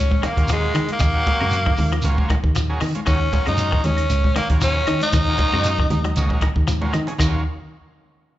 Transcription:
Already playing: C#4
0.11 kick, high conga
0.22 D#3 C#4 F4, muted fingered electric bass stroke, closed hi-hat, high conga, claves, shekere
0.26 A#3
0.37 D#2 F#3 A#3 C#4 F4, kick, closed hi-hat
0.48 F3, closed hi-hat, shekere
0.52 G#3
0.74 D#3, closed hi-hat, low conga, claves, shekere
0.89 A#3, closed hi-hat, high conga
0.99 D#2 D#3, kick, closed hi-hat, low conga, claves, shekere
1.14 F#3 A#3 C#4 F#4
1.25 kick, closed hi-hat, high conga, shekere
1.40 F#2 C#3, high conga, claves
1.51 closed hi-hat, shekere
1.66 D#3, kick
1.77 D#2, open hi-hat, high conga, low conga, shekere
1.92 F3, closed hi-hat, claves
2.02 C#2 F#3 A#3 C#4 F4, closed hi-hat, low conga, shekere
2.18 kick, high conga
2.29 D#3, muted fingered electric bass stroke, kick, closed hi-hat, high conga, claves, shekere
2.44 D#2, kick
2.55 F3, closed hi-hat, shekere
2.70 F#3 A#3 C#4 G#4
2.81 D#3, open hi-hat, low conga, claves, shekere
2.95 C#4 F4, closed hi-hat, high conga
3.05 D#2 D#3 F#3 A#3 C#4 F#4, kick, closed hi-hat, claves, shekere
3.32 F#3 A#3 C#4 F4, kick, closed hi-hat, high conga, shekere
3.46 F#2 C#3 D#4, closed hi-hat, high conga, claves
3.58 closed hi-hat, shekere
3.72 D#3, kick
3.84 D#2 C#4, closed hi-hat, high conga, low conga, shekere
3.97 closed hi-hat, claves
4.10 C#2, closed hi-hat, shekere
4.24 kick, high conga
4.35 D#3 A#3 C#4 F4, muted fingered electric bass stroke, closed hi-hat, high conga, claves, shekere
4.50 D#2 F#3 A#3 C#4 F4, kick, closed hi-hat
4.61 F3 C#4, closed hi-hat, shekere
4.87 D#3, closed hi-hat, low conga, claves, shekere
5.01 D#4, closed hi-hat, high conga
5.12 D#2 D#3, kick, closed hi-hat, low conga, claves, shekere
5.29 F#3 A#3 C#4 F4
5.38 kick, closed hi-hat, high conga, shekere
5.53 F#2 C#3, high conga, claves
5.64 closed hi-hat, shekere
5.79 D#3, kick
5.90 D#2, closed hi-hat, high conga, low conga, shekere
6.04 F#3, closed hi-hat, claves
6.16 C#2 F#3 A#3 C#4 D#4, closed hi-hat, high conga, low conga, shekere
6.30 kick, high conga
6.41 D#3, muted fingered electric bass stroke, kick, closed hi-hat, high conga, claves, shekere
6.56 D#2, kick
6.68 F3, closed hi-hat, high conga, shekere
6.81 F#3 A#3 C#4 F4, high conga
6.93 D#3, closed hi-hat, low conga, claves, shekere
7.07 C#4 G#4, closed hi-hat, low conga
7.18 D#2 D#3 F#3 A#3 C#4 F4, kick, crash, low conga, claves, shekere

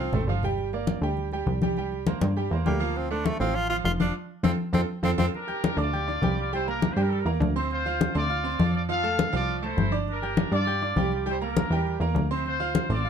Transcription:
Already playing: C2 C4
0.00 F3 F4 F5
0.13 A1 A3 A4 C5, low conga
0.27 G1 F3 F4 F5
0.43 G3 G4 G5, low conga
0.58 high conga
0.73 A#3 A#4 D5, high conga
0.87 high conga
1.01 D2 G3 G4 G5, high conga
1.17 high conga
1.32 G3 G4 G5, high conga
1.46 C2, high conga
1.62 G3 G4 G5, high conga
1.77 G3 G4 G5, high conga
1.92 high conga
2.07 A#3 A#4 C5, high conga
2.21 G2, high conga
2.37 G3 G4 G5, high conga
2.51 E2 A#3 A#4 C5, high conga
2.66 D2 G3 A#3 G4 G5, high conga
2.80 F3 F4 F5, high conga
2.96 C4, high conga
3.10 A3 D4 A4 C5, high conga
3.26 A3, high conga
3.40 A1 F3 C4 F4 F5, high conga
3.55 F4, high conga
3.70 F3 F4 F5, high conga
3.84 F1 F4, high conga
4.00 F3 D4 F4 F5, high conga
4.43 F2 C4 F4 A4, high conga
4.73 F2 C4 F4 A4, high conga
5.03 F2 C4 F4 A4, high conga
5.18 F2 C4 F4 A4, high conga
5.34 D4 A#4, high conga
5.47 G4 G5 G6, high conga
5.64 high conga
5.77 D2 D4 D5 D6, high conga
5.81 F4
5.93 G4 G5 G6, high conga
6.08 D4 D5 D6, high conga
6.22 C2 G3 G4 G5, high conga
6.39 F4 D5, high conga
6.53 G3 E4 G4 C5 G5, high conga
6.67 A#3 D4 A#4 A#5, high conga
6.82 high conga
6.92 C5
6.96 G2 G3 G4 G5, high conga
7.01 A#4
7.10 A4, high conga
7.18 A#4
7.25 E2 A#3 A#4 A#5, high conga
7.40 D2, high conga
7.56 C4 E4 C5 C6
7.71 F4 C5, high conga
7.86 F4 F5 F6, high conga
8.01 high conga
8.14 D2 C4 F4 C5 D5 C6, high conga
8.30 F4 F5 F6, high conga
8.44 C4 C5 C6, high conga
8.59 F2 F3 F4 F5, high conga
8.74 F4 D5, high conga
8.89 F3 F4 A4 F5, high conga
9.03 A3 A4 A5, high conga
9.19 high conga
9.33 C2 F3 F4 D5 F5, high conga
9.49 high conga
9.57 D5
9.62 A3 E4 A4 C5 A5, high conga
9.77 G1, high conga
9.92 D4 D5 D6
10.08 D4 A#4, high conga
10.22 G4 G5 G6, high conga
10.37 high conga
10.52 G2 D4 F4 D5 D6, high conga
10.67 G4 G5 G6, high conga
10.82 D4 D5 D6, high conga
10.96 C2 G3 G4 G5, high conga
11.12 F4 D5, high conga
11.26 G3 E4 G4 C5 G5, high conga
11.41 A#3 D4 A#4 A#5, high conga
11.57 high conga
11.70 E2 G3 G4 G5, high conga
11.87 high conga
12.00 E2 A#3 A#4 A#5, high conga
12.14 D2, high conga
12.31 C4 E4 C5 C6
12.46 F4 C5, high conga
12.60 F4 F5 F6, high conga
12.75 high conga
12.89 A1 C4 F4 C5 D5 C6, high conga
13.05 F4 F5 F6, high conga

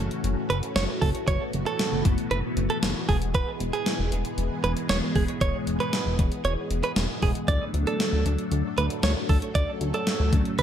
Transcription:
Already playing: E3 A3 C#4 F#4
0.00 F#1
0.11 closed hi-hat
0.24 F#1, closed hi-hat
0.50 F#1 B4, closed hi-hat
0.63 closed hi-hat
0.76 F#1 C#5, snare, closed hi-hat
1.01 F#1 A4, kick, open hi-hat
1.15 closed hi-hat
1.28 F#1 B3 C#5, kick, closed hi-hat
1.53 F#1, closed hi-hat
1.66 A4, closed hi-hat
1.79 snare, closed hi-hat
1.92 F#1
2.05 F#1, kick, closed hi-hat
2.18 closed hi-hat
2.31 F#1 B4, closed hi-hat
2.57 F#1, closed hi-hat
2.70 A4, closed hi-hat
2.83 F#1, snare, closed hi-hat
3.09 E1 G#3 B3 G#4, kick, open hi-hat
3.22 closed hi-hat
3.34 B4, kick, closed hi-hat
3.60 E1, closed hi-hat
3.73 G#4, closed hi-hat
3.86 snare, closed hi-hat
3.99 E1
4.12 E1, closed hi-hat
4.25 closed hi-hat
4.38 E1, closed hi-hat
4.64 E1 B4, closed hi-hat
4.77 closed hi-hat
4.89 E1 C#5, snare, closed hi-hat
5.15 E1 G#4, kick, open hi-hat
5.28 closed hi-hat
5.41 E1 C#5, kick, closed hi-hat
5.67 E1, closed hi-hat
5.80 B4, closed hi-hat
5.93 snare, closed hi-hat
6.06 E1
6.19 E1, kick, closed hi-hat
6.32 closed hi-hat
6.45 E1 C#5, closed hi-hat
6.71 E1, closed hi-hat
6.83 B4, closed hi-hat
6.96 E1, snare, closed hi-hat
7.22 E1 G#4, kick, open hi-hat
7.35 closed hi-hat
7.48 D2 F#3 A3 D4 A4 D5, kick, closed hi-hat
7.74 D2, closed hi-hat
7.87 A4, closed hi-hat
8.00 snare, closed hi-hat
8.13 D2
8.26 D2, closed hi-hat
8.38 closed hi-hat
8.52 D2, closed hi-hat
8.78 D2 B4, closed hi-hat
8.90 closed hi-hat
9.03 D2 C#5, snare, closed hi-hat
9.29 D2 A4, kick, open hi-hat
9.42 closed hi-hat
9.55 D2 C#4 D5, kick, closed hi-hat
9.81 D2, closed hi-hat
9.94 A4, closed hi-hat
10.07 snare, closed hi-hat
10.20 D2
10.33 D2, kick, closed hi-hat
10.45 closed hi-hat
10.59 D2 B4, closed hi-hat

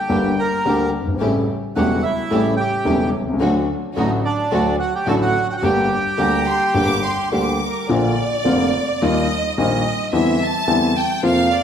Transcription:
Already playing: G4 G5
0.09 G1 G2 D3 G3 A#3 D4 G4
0.39 A#4 A#5
0.65 D2 D3 G3 A#3 D4 G4
1.00 F#1
1.07 G1
1.15 G#1
1.20 A1 A2 C#3 G3 A3 C#4 E4 G4
1.76 E1 E2 C#3 G3 A3 C#4 E4 F#4 G4 F#5
2.02 E4 E5
2.31 A1 A2 C#3 G3 A3 C#4 E4 G4
2.57 G4 G5
2.85 E1 E2 C#3 G3 A3 C#4 E4 G4
3.20 B1
3.27 C2
3.33 C#2
3.40 D2 D3 F#3 A3 D4 F#4
3.96 A1 A2 D3 F#3 A3 D4 D#4 F#4 D#5
4.25 D4 D5
4.52 D2 D3 F#3 A3 D4 F#4
4.80 F#4 F#5
4.95 G4 G5
5.07 A1 A2 D3 F#3 A3 D4 F#4 A4 A5
5.21 F#4 F#5
5.50 F#4 F#5 G5
5.57 F#4 F#5
5.62 G1 G2 D3 G3 A#3 D4 G4 G5
6.18 D2 D3 G3 A#3 D4 G4 A#5
6.47 C6
6.74 G1 G2 D3 G3 A#3 D4 G4 D6
7.04 C6
7.32 D2 D3 G3 A#3 D4 G4 D6
7.64 A#4
7.89 A#1 A#2 D3 F3 A#3 F4 D5
8.45 F1 F2 D3 F3 A#3 F4
9.02 D#2 D#3 G3 A#3 F4 D#5
9.58 A#1 A#2 D#3 G3 A#3 F4 D#5
10.13 E2 D3 E3 G3 C4 E4 E5
10.42 A5
10.68 E2 D3 E3 G3 C4 E4
10.98 G5
11.23 F2 C3 F3 A#3 F4 F5
11.53 D5

